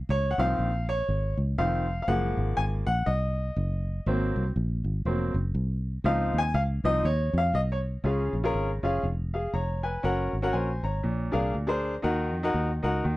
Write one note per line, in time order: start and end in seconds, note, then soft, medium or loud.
0.09 0.34 C#2 loud
0.09 0.31 C#5 medium
0.31 0.39 F#5 medium
0.38 0.55 C2 medium
0.38 0.69 D#3 soft
0.38 0.69 F3 soft
0.38 0.69 C4 medium
0.38 0.85 F5 loud
0.59 1.01 A#1 medium
0.89 1.35 C#5 medium
1.08 1.34 G#1 medium
1.37 1.55 C#2 medium
1.58 2.00 F1 medium
1.58 1.85 D#3 soft
1.58 1.85 F3 soft
1.58 1.85 C4 medium
1.58 1.99 F5 medium
2.02 2.08 F5 medium
2.08 2.33 F#1 loud
2.08 2.83 F3 medium
2.08 2.84 G#3 soft
2.08 2.84 A#3 medium
2.08 2.59 F#5 medium
2.37 2.54 G#1 medium
2.57 2.83 G#1 medium
2.57 2.64 G#5 medium
2.87 3.04 A#1 medium
2.87 3.08 F#5 medium
3.06 3.49 C2 medium
3.06 4.32 D#5 medium
3.56 3.99 F#1 loud
4.06 4.32 G#1 loud
4.06 4.42 F#3 medium
4.06 4.43 A#3 soft
4.06 4.43 C4 medium
4.36 4.53 C2 medium
4.56 4.81 A#1 medium
4.84 5.02 G#1 medium
5.05 5.31 F1 medium
5.05 5.32 F#3 soft
5.05 5.33 A#3 soft
5.05 5.33 C4 soft
5.34 5.52 F#1 medium
5.54 5.97 C2 loud
6.04 6.30 C#2 loud
6.04 6.41 F3 medium
6.04 6.41 C4 soft
6.04 6.41 D#4 medium
6.04 6.36 F5 medium
6.33 6.51 D#2 medium
6.38 6.54 G#5 loud
6.54 6.79 C#2 loud
6.54 6.61 F5 medium
6.84 7.01 C2 medium
6.84 7.03 F3 medium
6.84 7.03 C4 soft
6.84 7.03 D#4 medium
6.84 7.06 D#5 loud
7.04 7.29 D#2 medium
7.04 7.39 C#5 medium
7.33 7.51 F2 medium
7.38 7.55 F5 medium
7.54 7.96 C2 medium
7.54 7.60 D#5 medium
7.72 7.78 C#5 medium
8.04 8.29 C#2 medium
8.04 8.80 C#3 medium
8.04 8.33 C#4 medium
8.04 8.33 F4 medium
8.04 8.34 G#4 medium
8.04 8.34 F5 medium
8.33 8.51 A#1 medium
8.44 8.68 C#4 medium
8.44 8.68 F4 medium
8.44 8.69 G#4 medium
8.44 8.69 A#4 medium
8.54 8.79 G#1 medium
8.83 9.01 F#1 medium
8.83 9.04 C#4 medium
8.83 9.04 F4 medium
8.83 9.04 G#4 medium
8.83 9.04 F5 medium
9.03 9.46 F1 medium
9.34 9.53 G#4 soft
9.34 9.53 F5 medium
9.53 9.96 F1 medium
9.53 9.82 C#5 medium
9.53 9.82 A#5 medium
9.83 10.31 B4 soft
9.83 10.31 G#5 medium
10.03 10.29 F#1 medium
10.03 10.33 C#4 medium
10.03 10.33 F#4 medium
10.03 10.33 A#4 medium
10.03 10.33 F#5 medium
10.33 10.50 G#1 medium
10.42 10.67 C#4 medium
10.42 10.68 F#4 medium
10.42 10.68 A#4 medium
10.42 10.54 F#5 medium
10.53 10.79 A#1 medium
10.53 10.82 C5 soft
10.53 10.81 G#5 medium
10.83 11.01 G#1 medium
10.83 11.32 C#5 soft
10.83 11.31 A#5 medium
11.03 11.29 A#1 medium
11.03 11.79 A#2 medium
11.32 11.51 C2 medium
11.32 11.53 D4 medium
11.32 11.53 G#4 medium
11.32 11.53 A#4 medium
11.32 11.54 F5 medium
11.54 11.97 D2 medium
11.67 11.93 D4 medium
11.67 11.93 G#4 medium
11.67 11.93 A#4 medium
11.67 11.93 C5 medium
12.02 12.34 D#2 medium
12.02 12.79 D#3 medium
12.02 12.32 D#4 medium
12.02 12.33 F#4 medium
12.02 12.33 A#4 medium
12.02 12.33 F#5 medium
12.34 12.51 F2 medium
12.43 12.68 D#4 medium
12.43 12.68 F#4 medium
12.43 12.69 A#4 medium
12.43 12.69 F#5 medium
12.54 12.79 D#2 medium
12.83 13.01 C#2 medium
12.83 13.04 D#4 medium
12.83 13.04 F#4 medium
12.83 13.04 A#4 medium
12.83 13.04 F#5 medium
13.04 13.17 D#2 medium
13.04 13.17 D#3 medium